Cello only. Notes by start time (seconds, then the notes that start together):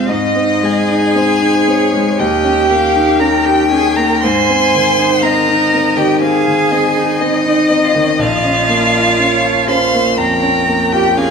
0.07 D#4
0.63 G#4
2.18 G4
3.20 A#4
3.46 G4
3.71 G#4
3.97 A#4
4.23 C5
5.23 A#4
5.97 G4
6.22 G#4
7.20 D#4
7.85 F4
7.94 D#4
8.02 C#4
8.12 D#4
8.20 F4
9.70 C5
10.18 A#4
10.92 G4
11.16 G#4